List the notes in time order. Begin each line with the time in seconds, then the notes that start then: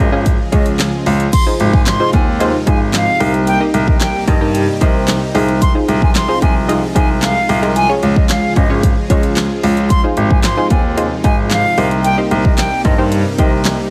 Already playing: C#3 F3 G#3 F4 G#4
0.00 G#1 D#5
0.12 C#4 F4 G#4 D#5
0.26 kick, closed hi-hat
0.52 C#2 C#4 F4 G#4 C#5 D#5, kick, closed hi-hat
0.66 closed hi-hat
0.79 snare, clap, closed hi-hat
1.06 C#2, open hi-hat
1.20 closed hi-hat
1.33 C3 F3 G#3 D#4 F4 C6, kick, closed hi-hat, crash
1.46 D#4 F4 G#4 C5
1.60 G#1, closed hi-hat
1.73 G#5, kick
1.86 C6, snare, clap, closed hi-hat
2.00 D#4 F4 G#4 C5
2.13 D#2 G#5, kick, closed hi-hat
2.40 D#4 F4 G#4 C5, closed hi-hat
2.67 G#1 D#4 F4 G#4 C5 G#5, kick, closed hi-hat
2.94 F5, snare, clap, closed hi-hat
3.20 C2 C3 G3 A#3 D#4 G4 A#4 C5, open hi-hat
3.34 closed hi-hat
3.47 G5, closed hi-hat
3.60 D#4 G4 A#4 D#5
3.74 C2, closed hi-hat
3.88 D#5, kick
4.01 G5, snare, clap, closed hi-hat
4.27 G2 D#4 G4 A#4 D#5, kick, closed hi-hat
4.41 D#4 G4 A#4 D#5
4.55 closed hi-hat
4.81 C2 D#4 G4 A#4 C5 D#5, kick, closed hi-hat
5.08 snare, clap, closed hi-hat
5.35 C2 F3 G#3 D#4 F4 G#4 C5, open hi-hat
5.49 closed hi-hat
5.62 C6, kick, closed hi-hat
5.75 D#4 F4 G#4 C5
5.88 C2, closed hi-hat
6.02 G#5, kick
6.15 C6, snare, clap, closed hi-hat
6.28 D#4 F4 G#4 C5
6.42 C2 G#5, kick, closed hi-hat
6.68 D#4 F4 G#4 D#5, closed hi-hat
6.95 C2 D#4 F4 G#4 C5 G#5, kick, closed hi-hat
7.22 F5, snare, clap, closed hi-hat
7.49 C2, open hi-hat
7.62 D#4 F4 G#4 A#4, closed hi-hat
7.76 C#3 G#4 G#5, closed hi-hat
7.89 C#4 F4 G#4 C#5
8.03 C#2, closed hi-hat
8.16 D#5, kick
8.29 F5, snare, clap, closed hi-hat
8.56 G#1 C#4 F4 G#4 C#5 D#5, kick, closed hi-hat
8.70 C#4 F4 G#4 C#5
8.83 kick, closed hi-hat
9.10 C#2 C#4 F4 G#4 C#5 D#5, kick, closed hi-hat
9.23 closed hi-hat
9.37 snare, clap, closed hi-hat
9.63 C#2, open hi-hat
9.77 closed hi-hat
9.90 C3 G#3 D#4 C6, kick, closed hi-hat
10.04 D#4 F4 G#4 C5
10.17 G#1, closed hi-hat
10.30 G#5, kick
10.44 C6, snare, clap, closed hi-hat
10.57 D#4 F4 G#4 C5
10.70 D#2 G#5, kick, closed hi-hat
10.97 D#4 F4 G#4 C5, closed hi-hat
11.24 G#1 D#4 F4 G#4 D#5 G#5, kick, closed hi-hat
11.51 F5, snare, clap, closed hi-hat
11.78 C2 G3 A#3 D#4 G4 A#4 C5, open hi-hat
11.91 closed hi-hat
12.04 G5, closed hi-hat
12.18 D#4 G4 A#4 C5
12.31 C2, closed hi-hat
12.44 D#5, kick
12.58 G5, snare, clap, closed hi-hat
12.85 G2 D#4 G4 A#4 C5 D#5, kick, closed hi-hat
12.98 D#4 G4 A#4 C5
13.12 closed hi-hat
13.38 C2 D#4 G4 A#4 C5 D#5, kick, closed hi-hat
13.65 snare, clap, closed hi-hat